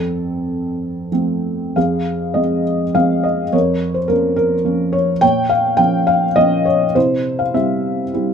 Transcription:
0, 0, Header, 1, 2, 480
1, 0, Start_track
1, 0, Key_signature, -4, "minor"
1, 0, Tempo, 663717
1, 1276, Tempo, 589391
1, 1277, Time_signature, 3, 2, 24, 8
1, 2716, Tempo, 567644
1, 5116, Tempo, 597015
1, 6698, End_track
2, 0, Start_track
2, 0, Title_t, "Felt piano"
2, 0, Program_c, 0, 0
2, 0, Control_c, 0, 64, 127
2, 0, Note_on_c, 0, 41, 53
2, 0, Note_on_c, 0, 60, 47
2, 0, Note_on_c, 0, 69, 63
2, 784, Note_off_c, 0, 69, 0
2, 786, Note_off_c, 0, 60, 0
2, 809, Note_on_c, 0, 53, 45
2, 811, Note_on_c, 0, 57, 37
2, 814, Note_on_c, 0, 60, 46
2, 1247, Note_off_c, 0, 41, 0
2, 1261, Note_off_c, 0, 53, 0
2, 1262, Note_off_c, 0, 57, 0
2, 1264, Note_off_c, 0, 60, 0
2, 1273, Note_on_c, 0, 77, 64
2, 1274, Note_on_c, 0, 41, 55
2, 1284, Note_on_c, 0, 68, 51
2, 1286, Control_c, 0, 64, 0
2, 1446, Control_c, 0, 64, 127
2, 1745, Note_on_c, 0, 75, 60
2, 1752, Note_on_c, 0, 53, 35
2, 1757, Note_on_c, 0, 56, 31
2, 1759, Note_on_c, 0, 60, 36
2, 1772, Note_off_c, 0, 77, 0
2, 1974, Note_off_c, 0, 68, 0
2, 2143, Note_off_c, 0, 53, 0
2, 2146, Note_off_c, 0, 56, 0
2, 2147, Note_off_c, 0, 60, 0
2, 2238, Note_on_c, 0, 53, 40
2, 2238, Note_on_c, 0, 77, 79
2, 2243, Note_on_c, 0, 56, 39
2, 2246, Note_on_c, 0, 60, 48
2, 2252, Note_off_c, 0, 75, 0
2, 2474, Note_on_c, 0, 75, 61
2, 2487, Note_off_c, 0, 77, 0
2, 2618, Note_off_c, 0, 53, 0
2, 2621, Note_off_c, 0, 56, 0
2, 2623, Note_off_c, 0, 60, 0
2, 2682, Note_off_c, 0, 41, 0
2, 2712, Note_on_c, 0, 73, 74
2, 2713, Note_on_c, 0, 41, 60
2, 2719, Note_off_c, 0, 75, 0
2, 2721, Note_on_c, 0, 70, 50
2, 2727, Control_c, 0, 64, 0
2, 2874, Control_c, 0, 64, 127
2, 3063, Note_on_c, 0, 72, 56
2, 3083, Note_off_c, 0, 73, 0
2, 3165, Note_off_c, 0, 70, 0
2, 3178, Note_on_c, 0, 70, 74
2, 3191, Note_off_c, 0, 72, 0
2, 3192, Note_on_c, 0, 53, 40
2, 3192, Note_on_c, 0, 58, 38
2, 3196, Note_on_c, 0, 61, 42
2, 3405, Note_off_c, 0, 70, 0
2, 3419, Note_on_c, 0, 70, 82
2, 3572, Note_off_c, 0, 53, 0
2, 3572, Note_off_c, 0, 58, 0
2, 3574, Note_off_c, 0, 61, 0
2, 3660, Note_on_c, 0, 53, 44
2, 3664, Note_on_c, 0, 58, 46
2, 3665, Note_on_c, 0, 61, 50
2, 3894, Note_on_c, 0, 73, 80
2, 3915, Note_off_c, 0, 70, 0
2, 4045, Note_off_c, 0, 53, 0
2, 4047, Note_off_c, 0, 58, 0
2, 4048, Note_off_c, 0, 61, 0
2, 4109, Note_off_c, 0, 41, 0
2, 4130, Note_off_c, 0, 73, 0
2, 4136, Note_on_c, 0, 79, 99
2, 4143, Note_on_c, 0, 73, 67
2, 4146, Note_on_c, 0, 46, 65
2, 4157, Control_c, 0, 64, 0
2, 4308, Control_c, 0, 64, 127
2, 4375, Note_on_c, 0, 77, 83
2, 4388, Note_off_c, 0, 79, 0
2, 4608, Note_on_c, 0, 79, 94
2, 4623, Note_on_c, 0, 53, 47
2, 4628, Note_on_c, 0, 58, 41
2, 4629, Note_on_c, 0, 61, 47
2, 4632, Note_off_c, 0, 77, 0
2, 4840, Note_off_c, 0, 73, 0
2, 4860, Note_on_c, 0, 77, 85
2, 4871, Note_off_c, 0, 79, 0
2, 5015, Note_off_c, 0, 53, 0
2, 5018, Note_off_c, 0, 58, 0
2, 5019, Note_off_c, 0, 61, 0
2, 5105, Note_on_c, 0, 75, 89
2, 5112, Note_on_c, 0, 53, 51
2, 5117, Note_off_c, 0, 77, 0
2, 5118, Note_on_c, 0, 58, 43
2, 5118, Note_on_c, 0, 61, 52
2, 5343, Note_on_c, 0, 73, 72
2, 5349, Note_off_c, 0, 75, 0
2, 5489, Note_off_c, 0, 53, 0
2, 5492, Note_off_c, 0, 58, 0
2, 5492, Note_off_c, 0, 61, 0
2, 5554, Note_off_c, 0, 46, 0
2, 5581, Note_on_c, 0, 48, 58
2, 5584, Note_on_c, 0, 72, 77
2, 5590, Note_off_c, 0, 73, 0
2, 5594, Control_c, 0, 64, 0
2, 5595, Note_on_c, 0, 64, 60
2, 5722, Control_c, 0, 64, 127
2, 5934, Note_on_c, 0, 77, 66
2, 5953, Note_off_c, 0, 72, 0
2, 6050, Note_off_c, 0, 64, 0
2, 6056, Note_on_c, 0, 55, 38
2, 6057, Note_on_c, 0, 60, 36
2, 6060, Note_off_c, 0, 77, 0
2, 6060, Note_on_c, 0, 76, 69
2, 6062, Note_on_c, 0, 64, 40
2, 6448, Note_off_c, 0, 55, 0
2, 6449, Note_off_c, 0, 60, 0
2, 6452, Note_off_c, 0, 64, 0
2, 6516, Note_off_c, 0, 76, 0
2, 6536, Note_on_c, 0, 55, 43
2, 6539, Note_on_c, 0, 60, 38
2, 6544, Note_on_c, 0, 64, 44
2, 6698, Note_off_c, 0, 48, 0
2, 6698, Note_off_c, 0, 55, 0
2, 6698, Note_off_c, 0, 60, 0
2, 6698, Note_off_c, 0, 64, 0
2, 6698, End_track
0, 0, End_of_file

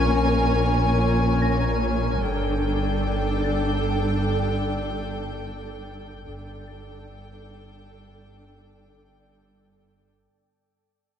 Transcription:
0, 0, Header, 1, 8, 480
1, 0, Start_track
1, 0, Tempo, 500000
1, 10746, End_track
2, 0, Start_track
2, 0, Title_t, "Celesta"
2, 0, Program_c, 0, 8
2, 0, Control_c, 0, 64, 127
2, 1363, Note_on_c, 0, 94, 34
2, 2142, Control_c, 0, 64, 0
2, 2328, Control_c, 0, 64, 127
2, 3304, Note_on_c, 0, 93, 31
2, 3652, Note_off_c, 0, 94, 0
2, 5596, Note_off_c, 0, 93, 0
2, 6410, Note_on_c, 0, 93, 25
2, 8705, Note_off_c, 0, 93, 0
2, 9929, Control_c, 0, 64, 0
2, 10746, End_track
3, 0, Start_track
3, 0, Title_t, "Violin section"
3, 0, Program_c, 1, 48
3, 0, Note_on_c, 1, 80, 35
3, 2082, Note_off_c, 1, 80, 0
3, 2125, Note_on_c, 1, 79, 40
3, 5979, Note_off_c, 1, 79, 0
3, 6024, Note_on_c, 1, 79, 42
3, 9683, Note_off_c, 1, 79, 0
3, 10746, End_track
4, 0, Start_track
4, 0, Title_t, "Ambient pad"
4, 0, Program_c, 2, 92
4, 0, Note_on_c, 2, 70, 49
4, 0, Note_on_c, 2, 73, 44
4, 0, Note_on_c, 2, 80, 45
4, 2096, Note_off_c, 2, 70, 0
4, 2096, Note_off_c, 2, 80, 0
4, 2098, Note_off_c, 2, 73, 0
4, 2134, Note_on_c, 2, 69, 46
4, 2135, Note_on_c, 2, 74, 44
4, 2136, Note_on_c, 2, 79, 42
4, 6014, Note_off_c, 2, 69, 0
4, 6015, Note_off_c, 2, 79, 0
4, 6019, Note_off_c, 2, 74, 0
4, 6025, Note_on_c, 2, 69, 44
4, 6026, Note_on_c, 2, 79, 44
4, 6031, Note_on_c, 2, 74, 48
4, 9875, Note_off_c, 2, 69, 0
4, 9876, Note_off_c, 2, 79, 0
4, 9878, Note_off_c, 2, 74, 0
4, 10746, End_track
5, 0, Start_track
5, 0, Title_t, "Viola section"
5, 0, Program_c, 3, 48
5, 0, Note_on_c, 3, 61, 32
5, 0, Note_on_c, 3, 70, 33
5, 2090, Note_off_c, 3, 61, 0
5, 2091, Note_off_c, 3, 70, 0
5, 2130, Note_on_c, 3, 62, 35
5, 2131, Note_on_c, 3, 69, 33
5, 5982, Note_off_c, 3, 62, 0
5, 5982, Note_off_c, 3, 69, 0
5, 6014, Note_on_c, 3, 69, 42
5, 6016, Note_on_c, 3, 62, 36
5, 9678, Note_off_c, 3, 69, 0
5, 9679, Note_off_c, 3, 62, 0
5, 10746, End_track
6, 0, Start_track
6, 0, Title_t, "Cello section"
6, 0, Program_c, 4, 48
6, 0, Note_on_c, 4, 46, 42
6, 2091, Note_off_c, 4, 46, 0
6, 2128, Note_on_c, 4, 43, 46
6, 6003, Note_off_c, 4, 43, 0
6, 6015, Note_on_c, 4, 43, 47
6, 9678, Note_off_c, 4, 43, 0
6, 10746, End_track
7, 0, Start_track
7, 0, Title_t, "Double bass section"
7, 0, Program_c, 5, 48
7, 0, Note_on_c, 5, 34, 36
7, 2092, Note_off_c, 5, 34, 0
7, 2129, Note_on_c, 5, 31, 39
7, 6004, Note_off_c, 5, 31, 0
7, 6016, Note_on_c, 5, 31, 41
7, 9679, Note_off_c, 5, 31, 0
7, 10746, End_track
8, 0, Start_track
8, 0, Title_t, "Sub bass"
8, 0, Program_c, 6, 38
8, 0, Note_on_c, 6, 34, 56
8, 2115, Note_on_c, 6, 31, 53
8, 2130, Note_off_c, 6, 34, 0
8, 6013, Note_off_c, 6, 31, 0
8, 6021, Note_on_c, 6, 31, 56
8, 9873, Note_off_c, 6, 31, 0
8, 10746, End_track
0, 0, End_of_file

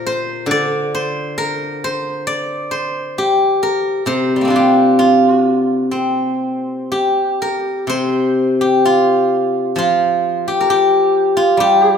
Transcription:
0, 0, Header, 1, 2, 480
1, 0, Start_track
1, 0, Tempo, 878477
1, 275, Time_signature, 4, 2, 24, 8
1, 1240, Tempo, 903614
1, 2680, Tempo, 934579
1, 3160, Tempo, 990099
1, 4120, Tempo, 952381
1, 4600, Tempo, 916031
1, 6240, End_track
2, 0, Start_track
2, 0, Title_t, "Guzheng"
2, 0, Program_c, 0, 107
2, 0, Note_on_c, 0, 46, 50
2, 0, Note_on_c, 0, 70, 74
2, 35, Note_on_c, 0, 72, 68
2, 253, Note_on_c, 0, 50, 51
2, 267, Note_off_c, 0, 46, 0
2, 278, Note_on_c, 0, 74, 83
2, 514, Note_off_c, 0, 72, 0
2, 517, Note_on_c, 0, 72, 65
2, 750, Note_off_c, 0, 70, 0
2, 753, Note_on_c, 0, 70, 72
2, 1004, Note_off_c, 0, 72, 0
2, 1006, Note_on_c, 0, 72, 70
2, 1238, Note_off_c, 0, 74, 0
2, 1240, Note_on_c, 0, 74, 73
2, 1473, Note_off_c, 0, 72, 0
2, 1475, Note_on_c, 0, 72, 62
2, 1709, Note_off_c, 0, 50, 0
2, 1725, Note_on_c, 0, 67, 65
2, 1894, Note_off_c, 0, 70, 0
2, 1961, Note_on_c, 0, 70, 65
2, 2191, Note_on_c, 0, 48, 44
2, 2194, Note_off_c, 0, 72, 0
2, 2196, Note_on_c, 0, 72, 70
2, 2219, Note_off_c, 0, 74, 0
2, 2351, Note_on_c, 0, 55, 24
2, 2378, Note_on_c, 0, 58, 28
2, 2398, Note_on_c, 0, 60, 33
2, 2412, Note_on_c, 0, 62, 33
2, 2426, Note_on_c, 0, 65, 38
2, 2453, Note_off_c, 0, 67, 0
2, 2455, Note_on_c, 0, 67, 53
2, 2458, Note_off_c, 0, 55, 0
2, 2682, Note_off_c, 0, 65, 0
2, 2684, Note_on_c, 0, 65, 57
2, 3076, Note_off_c, 0, 70, 0
2, 3157, Note_off_c, 0, 60, 0
2, 3159, Note_on_c, 0, 60, 44
2, 3225, Note_off_c, 0, 72, 0
2, 3636, Note_off_c, 0, 48, 0
2, 3642, Note_off_c, 0, 67, 0
2, 3645, Note_on_c, 0, 67, 56
2, 3817, Note_off_c, 0, 62, 0
2, 3889, Note_on_c, 0, 70, 57
2, 3935, Note_off_c, 0, 65, 0
2, 3992, Note_off_c, 0, 58, 0
2, 4108, Note_on_c, 0, 48, 43
2, 4120, Note_on_c, 0, 72, 75
2, 4478, Note_off_c, 0, 67, 0
2, 4480, Note_on_c, 0, 67, 59
2, 4604, Note_on_c, 0, 65, 59
2, 4635, Note_off_c, 0, 60, 0
2, 4964, Note_off_c, 0, 70, 0
2, 5077, Note_on_c, 0, 53, 45
2, 5081, Note_off_c, 0, 48, 0
2, 5089, Note_off_c, 0, 65, 0
2, 5091, Note_on_c, 0, 65, 63
2, 5138, Note_off_c, 0, 72, 0
2, 5452, Note_off_c, 0, 67, 0
2, 5454, Note_on_c, 0, 67, 55
2, 5521, Note_on_c, 0, 70, 46
2, 5569, Note_off_c, 0, 67, 0
2, 5571, Note_on_c, 0, 67, 68
2, 5918, Note_off_c, 0, 65, 0
2, 5920, Note_on_c, 0, 65, 61
2, 6028, Note_on_c, 0, 55, 46
2, 6041, Note_off_c, 0, 67, 0
2, 6043, Note_on_c, 0, 67, 71
2, 6240, Note_off_c, 0, 53, 0
2, 6240, Note_off_c, 0, 55, 0
2, 6240, Note_off_c, 0, 65, 0
2, 6240, Note_off_c, 0, 67, 0
2, 6240, Note_off_c, 0, 70, 0
2, 6240, End_track
0, 0, End_of_file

